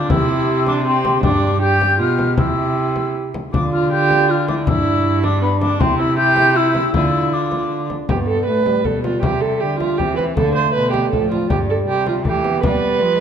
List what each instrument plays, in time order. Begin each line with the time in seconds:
Already playing: viola D4, trombone F4, flute D6
0.10 cello C3, viola E4, trombone G4, flute E6, frame drum
0.67 viola D4, flute D6, frame drum
0.87 viola C4, trombone G4, flute C6
1.05 frame drum
1.23 cello G2, viola D4, trombone G4, flute D6, frame drum
1.61 trombone G4, viola G4, flute G6
1.81 frame drum
1.99 cello B2, viola F4, flute F6
2.19 frame drum
2.38 cello C3, viola E4, trombone G4, flute E6, frame drum
2.96 frame drum
3.34 frame drum
3.53 cello D3, viola D4, trombone F4, flute D6, frame drum
3.73 viola F4, flute F6
3.92 viola G4, flute G6
4.10 frame drum
4.29 viola F4, trombone F4, flute F6
4.48 viola D4, trombone E4, flute D6, frame drum
4.67 cello G2, trombone D4, viola E4, flute E6, frame drum
5.23 viola D4, flute D6, frame drum
5.42 viola B3, trombone D4, flute B5
5.61 viola D4, flute D6, frame drum
5.80 cello C3, viola C4, trombone E4, flute C6, frame drum
5.99 viola E4, flute E6
6.17 trombone E4, viola G4, flute G6
6.36 frame drum
6.56 trombone E4, viola E4, flute E6
6.75 frame drum
6.94 cello D3, viola E4, trombone F4, flute E6, frame drum
7.32 viola D4, trombone F4, flute D6
7.52 frame drum
7.90 frame drum
8.09 cello G2, trombone B3, viola G4, flute D5, frame drum
8.27 viola A4
8.46 cello A2, trombone A3, viola B4
8.66 trombone G3, frame drum
8.85 cello B2, trombone G3, viola A4, flute D5, frame drum
9.04 viola F4, frame drum
9.22 cello C3, viola G4, flute E5, frame drum
9.41 viola A4
9.61 cello D3, viola G4
9.79 viola F4, frame drum
9.98 cello E3, trombone C4, viola G4, flute E5, frame drum
10.16 viola B4, frame drum
10.36 cello D3, trombone A3, viola A4, flute F5, frame drum
10.55 viola C5
10.74 cello B2, viola B4, flute D5
10.92 viola G4, frame drum
11.11 cello A2, trombone F3, viola A4, frame drum
11.30 viola F4, frame drum
11.50 cello G2, trombone G3, viola G4, frame drum
11.70 viola A4
11.88 cello C3, viola G4
12.07 viola F4, frame drum
12.25 cello E3, trombone A3, viola G4, flute E5, frame drum
12.44 trombone B3, frame drum
12.63 cello G3, viola B4, flute D5, frame drum
12.83 flute D5
13.01 cello F3, trombone G3, flute D5